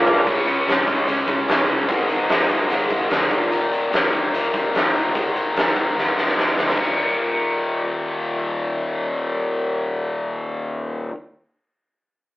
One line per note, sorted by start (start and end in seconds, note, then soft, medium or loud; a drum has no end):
0.00 0.19 G#2 medium
0.00 0.26 F3 medium
0.00 0.19 D4 medium
0.00 0.27 D4 medium
0.00 0.18 F4 medium
0.00 0.18 A#4 medium
0.00 0.26 A#4 medium
0.00 0.18 F5 loud
0.06 0.25 A#2 medium
0.06 0.25 F3 medium
0.06 0.25 A#3 medium
0.06 mid tom loud
0.17 floor tom medium
0.26 0.41 C#2 medium
0.26 0.45 C#3 medium
0.26 0.47 G#3 loud
0.26 0.47 C#4 loud
0.26 kick loud
0.26 crash medium
0.46 0.62 C#2 medium
0.46 0.66 C#3 medium
0.46 0.67 G#3 medium
0.46 0.67 C#4 medium
0.46 closed hi-hat medium
0.67 0.82 C#2 medium
0.67 0.86 C#3 medium
0.67 0.87 G#3 medium
0.67 0.87 C#4 loud
0.67 snare loud
0.67 closed hi-hat medium
0.87 1.02 C#2 medium
0.87 1.06 C#3 medium
0.87 1.06 G#3 medium
0.87 1.07 C#4 medium
0.87 kick medium
0.87 closed hi-hat medium
1.07 1.23 C#2 medium
1.07 1.27 C#3 medium
1.07 1.27 G#3 medium
1.07 1.28 C#4 medium
1.07 closed hi-hat medium
1.27 1.42 C#2 medium
1.27 1.47 C#3 medium
1.27 1.47 G#3 medium
1.27 1.48 C#4 loud
1.27 kick medium
1.27 closed hi-hat medium
1.48 1.63 C#2 medium
1.48 1.67 C#3 medium
1.48 1.68 G#3 medium
1.48 1.68 C#4 medium
1.48 snare loud
1.48 closed hi-hat medium
1.68 1.84 C#2 medium
1.68 1.87 C#3 medium
1.68 1.88 G#3 medium
1.68 1.88 C#4 medium
1.68 closed hi-hat soft
1.88 2.04 G#1 medium
1.88 2.07 G#2 medium
1.88 2.08 D#3 medium
1.88 2.08 G#3 medium
1.88 kick loud
1.88 closed hi-hat medium
2.09 2.24 G#1 medium
2.09 2.28 G#2 medium
2.09 2.28 D#3 medium
2.09 2.29 G#3 medium
2.09 closed hi-hat medium
2.29 2.45 G#1 medium
2.29 2.48 G#2 medium
2.29 2.48 D#3 medium
2.29 2.49 G#3 loud
2.29 snare loud
2.29 closed hi-hat medium
2.49 2.64 G#1 medium
2.49 2.68 G#2 medium
2.49 2.69 D#3 medium
2.49 2.70 G#3 medium
2.49 kick medium
2.49 closed hi-hat medium
2.69 2.85 D#2 medium
2.69 2.89 G#2 medium
2.69 2.90 D#3 medium
2.69 2.91 G#3 medium
2.69 closed hi-hat medium
2.90 3.05 G#1 medium
2.90 3.09 G#2 medium
2.90 3.10 D#3 medium
2.90 3.10 G#3 loud
2.90 kick medium
2.90 closed hi-hat medium
3.10 3.26 D2 medium
3.10 3.29 G#2 medium
3.10 3.30 D#3 medium
3.10 3.30 G#3 medium
3.10 snare loud
3.10 closed hi-hat medium
3.30 3.46 D#1 medium
3.30 3.49 D#2 medium
3.30 3.49 A#2 medium
3.30 3.50 D#3 medium
3.30 kick medium
3.30 closed hi-hat medium
3.50 3.66 D#1 medium
3.50 3.70 D#2 medium
3.50 3.70 A#2 medium
3.50 3.71 D#3 loud
3.50 closed hi-hat medium
3.71 3.87 D#1 medium
3.71 3.90 D#2 medium
3.71 3.90 A#2 medium
3.71 3.90 D#3 medium
3.71 closed hi-hat medium
3.91 4.07 D#1 medium
3.91 4.10 D#2 medium
3.91 4.11 A#2 medium
3.91 4.11 D#3 medium
3.91 snare loud
3.91 closed hi-hat medium
4.11 4.28 D#1 medium
4.11 4.32 D#2 medium
4.11 4.32 A#2 medium
4.11 4.33 D#3 medium
4.11 kick medium
4.11 closed hi-hat medium
4.32 4.48 D#1 medium
4.32 4.52 D#2 medium
4.32 4.52 A#2 medium
4.32 4.52 D#3 medium
4.32 closed hi-hat medium
4.53 4.69 D#1 medium
4.53 4.72 D#2 medium
4.53 4.73 A#2 medium
4.53 4.73 D#3 loud
4.53 kick medium
4.53 closed hi-hat medium
4.73 4.88 D#1 medium
4.73 4.92 D#2 medium
4.73 4.93 A#2 medium
4.73 4.94 D#3 medium
4.73 snare loud
4.73 closed hi-hat medium
4.93 5.09 G1 medium
4.93 5.13 D#2 medium
4.93 5.13 A#2 medium
4.93 5.13 D#3 medium
4.93 closed hi-hat medium
5.14 5.30 G#1 medium
5.14 5.33 G#2 medium
5.14 5.33 D#3 medium
5.14 5.33 G#3 medium
5.14 kick medium
5.14 closed hi-hat medium
5.34 5.50 G#1 medium
5.34 5.53 G#2 medium
5.34 5.54 D#3 medium
5.34 5.54 G#3 medium
5.34 closed hi-hat medium
5.54 5.70 G#1 medium
5.54 5.73 G#2 medium
5.54 5.74 D#3 medium
5.54 5.74 G#3 medium
5.54 snare medium
5.54 closed hi-hat medium
5.74 5.91 G#1 medium
5.74 5.94 G#2 medium
5.74 5.95 D#3 medium
5.74 5.95 G#3 medium
5.74 kick medium
5.74 closed hi-hat medium
5.95 6.11 D#2 medium
5.95 6.14 G#2 medium
5.95 6.15 D#3 medium
5.95 6.15 G#3 medium
5.95 snare soft
6.15 6.32 G#1 medium
6.15 6.34 G#2 medium
6.15 6.35 D#3 medium
6.15 6.35 G#3 medium
6.15 snare medium
6.28 snare medium
6.36 6.52 G#1 medium
6.36 6.54 G#2 medium
6.36 6.54 D#3 medium
6.36 6.55 G#3 medium
6.36 snare medium
6.55 6.72 D2 medium
6.55 6.76 G#2 medium
6.55 6.76 D#3 medium
6.55 6.76 G#3 medium
6.55 snare medium
6.68 snare medium
6.75 11.09 D#1 medium
6.75 11.11 D#2 medium
6.75 11.13 A#2 medium
6.75 11.15 D#3 medium
6.75 kick medium
6.75 crash medium